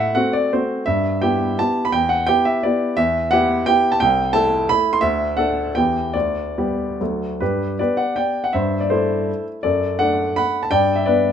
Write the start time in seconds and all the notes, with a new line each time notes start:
Already playing: A2 E5 F#5
0.15 A3 C4 F#4 F#5
0.33 D5
0.53 A3 C4 F#4 C5
0.86 G2 E5
1.22 B3 E4 G4 G5
1.59 B3 E4 G4 A5
1.85 B5
1.92 E2 G5
2.09 F#5
2.27 B3 E4 G4 G5
2.45 E5
2.63 B3 E4 G4 D5
2.97 E2 E5
3.31 B3 E4 G4 F#5
3.66 B3 E4 G4 G5
3.92 A5
4.00 C2 G5
4.33 A3 E4 A4 A5
4.69 A3 E4 A4 B5
4.93 C6
5.01 D2 E5
5.37 A3 D4 A4 F#5
5.75 E2 E3 B3 G4 G5
6.13 D2 D5
6.58 G3 B3 G4
7.00 D2 F#3 A3 A4
7.40 G2 G4 B4
7.79 B3 G4 B4 D5
7.97 D5 F#5
8.16 D5 G5
8.44 F#5
8.53 G2 C5 E5
8.81 D5
8.90 A3 E4 A4 C5
9.63 F#2 A4 D5
9.99 A3 D4 D5 F#5
10.36 F#5 B5
10.63 A5
10.71 G2 D5 G5
10.96 E5
11.06 B3 D4 B4 D5